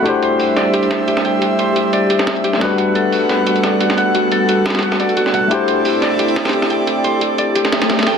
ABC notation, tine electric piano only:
X:1
M:4/4
L:1/8
Q:"Swing 16ths" 1/4=176
K:G
V:1 name="Tine electric piano"
[A,DEGc]8- | [A,DEGc]6- [A,DEGc] [G,A,DFB]- | [G,A,DFB]8- | [G,A,DFB]6- [G,A,DFB] z |
[A,DEGc]8- | [A,DEGc]8 |]